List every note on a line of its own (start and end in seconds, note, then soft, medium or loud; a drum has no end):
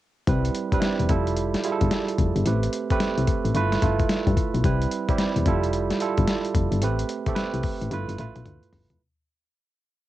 0.27 0.51 C2 loud
0.27 0.53 G3 medium
0.27 0.54 C4 medium
0.27 0.54 E4 medium
0.27 0.54 B4 medium
0.27 kick loud
0.27 closed hi-hat medium
0.45 closed hi-hat medium
0.55 closed hi-hat medium
0.72 0.76 E1 medium
0.72 1.08 G3 medium
0.72 1.10 C4 medium
0.72 0.77 D4 medium
0.72 1.10 B4 medium
0.72 kick medium
0.72 closed hi-hat medium
0.80 1.08 E4 medium
0.80 snare loud
0.80 closed hi-hat medium
1.00 1.08 E1 medium
1.00 closed hi-hat soft
1.09 1.56 F1 medium
1.09 1.56 G3 medium
1.09 1.56 E4 medium
1.09 1.56 F4 medium
1.09 1.57 A4 medium
1.09 kick medium
1.09 closed hi-hat medium
1.27 closed hi-hat medium
1.36 closed hi-hat medium
1.54 snare medium
1.54 closed hi-hat soft
1.64 2.15 G3 medium
1.64 2.16 E4 medium
1.64 2.16 F4 medium
1.64 1.73 G#4 medium
1.64 closed hi-hat medium
1.72 2.19 A4 medium
1.81 1.90 G1 loud
1.81 kick medium
1.81 closed hi-hat medium
1.91 snare loud
1.91 closed hi-hat medium
2.08 closed hi-hat soft
2.18 2.33 F1 medium
2.18 kick medium
2.18 closed hi-hat medium
2.36 2.44 G1 loud
2.36 closed hi-hat soft
2.45 2.69 A1 loud
2.45 2.72 A3 medium
2.45 2.72 C4 medium
2.45 2.72 G4 medium
2.45 2.72 B4 medium
2.45 closed hi-hat medium
2.63 closed hi-hat medium
2.73 closed hi-hat medium
2.90 2.94 C2 medium
2.90 3.48 A3 medium
2.90 3.48 C4 medium
2.90 3.48 G4 medium
2.90 3.48 B4 loud
2.90 kick medium
2.90 closed hi-hat medium
3.00 snare loud
3.00 closed hi-hat medium
3.17 3.26 C2 medium
3.17 closed hi-hat soft
3.27 kick medium
3.27 closed hi-hat medium
3.45 3.53 A1 medium
3.45 closed hi-hat soft
3.55 3.78 G1 loud
3.55 3.78 A3 medium
3.55 3.79 E4 medium
3.55 3.79 F4 medium
3.55 3.79 B4 loud
3.55 closed hi-hat medium
3.72 snare medium
3.72 closed hi-hat soft
3.82 4.05 G1 medium
3.82 4.34 A3 medium
3.82 4.34 E4 medium
3.82 4.34 F4 medium
3.82 4.34 A4 medium
3.82 kick medium
3.82 closed hi-hat medium
3.99 kick medium
3.99 closed hi-hat soft
4.09 snare loud
4.09 closed hi-hat medium
4.27 4.35 G2 loud
4.27 kick medium
4.27 closed hi-hat soft
4.37 kick medium
4.37 closed hi-hat medium
4.54 4.62 B1 loud
4.54 closed hi-hat medium
4.64 4.87 C2 loud
4.64 4.90 G3 medium
4.64 4.90 C4 medium
4.64 4.90 E4 medium
4.64 4.90 B4 medium
4.64 kick loud
4.64 closed hi-hat medium
4.81 closed hi-hat medium
4.91 closed hi-hat medium
5.08 5.12 E1 soft
5.08 5.45 G3 medium
5.08 5.46 C4 medium
5.08 5.46 E4 medium
5.08 5.46 G4 medium
5.08 kick medium
5.08 closed hi-hat medium
5.18 snare loud
5.18 closed hi-hat medium
5.36 5.44 E1 loud
5.36 closed hi-hat soft
5.46 5.92 F1 loud
5.46 5.93 G3 medium
5.46 5.93 E4 medium
5.46 5.93 F4 medium
5.46 5.93 A4 medium
5.46 kick medium
5.46 closed hi-hat medium
5.63 closed hi-hat medium
5.73 closed hi-hat medium
5.90 snare medium
5.90 closed hi-hat soft
6.00 6.52 G3 medium
6.00 6.52 E4 medium
6.00 6.52 F4 medium
6.00 6.52 A4 medium
6.00 closed hi-hat medium
6.17 6.26 G1 loud
6.17 kick medium
6.17 closed hi-hat soft
6.27 snare loud
6.27 closed hi-hat medium
6.45 closed hi-hat soft
6.55 6.69 F1 medium
6.55 kick medium
6.55 closed hi-hat medium
6.72 6.83 G1 medium
6.72 closed hi-hat soft
6.82 7.05 A1 loud
6.82 7.08 A3 medium
6.82 7.08 C4 medium
6.82 7.08 G4 medium
6.82 7.09 B4 medium
6.82 closed hi-hat medium
6.99 closed hi-hat medium
7.09 closed hi-hat medium
7.26 7.31 C2 soft
7.26 7.85 A3 medium
7.26 7.85 C4 medium
7.26 7.85 G4 medium
7.26 7.32 A4 medium
7.26 kick medium
7.26 closed hi-hat medium
7.35 7.88 B4 loud
7.35 snare loud
7.35 closed hi-hat medium
7.54 7.62 C2 medium
7.54 closed hi-hat soft
7.63 kick medium
7.63 open hi-hat medium
7.82 7.90 A1 medium
7.82 closed hi-hat medium
7.91 8.06 G1 loud
7.91 8.15 A3 medium
7.91 8.15 E4 medium
7.91 8.15 F4 medium
7.91 8.16 B4 loud
7.91 closed hi-hat medium
7.91 high tom soft
8.09 8.17 G1 medium
8.09 closed hi-hat medium
8.18 8.33 A1 medium
8.18 8.70 A3 medium
8.18 8.70 E4 medium
8.18 8.71 F4 medium
8.18 8.71 B4 medium
8.18 closed hi-hat medium
8.18 mid tom medium
8.36 8.44 B1 loud
8.36 closed hi-hat medium
8.36 mid tom medium
8.46 8.60 D2 medium
8.46 closed hi-hat medium
8.46 mid tom medium
8.63 closed hi-hat soft
8.73 8.88 G1 medium
8.73 floor tom loud
8.73 open hi-hat medium
8.90 8.99 F1 medium
8.90 closed hi-hat medium
8.90 floor tom medium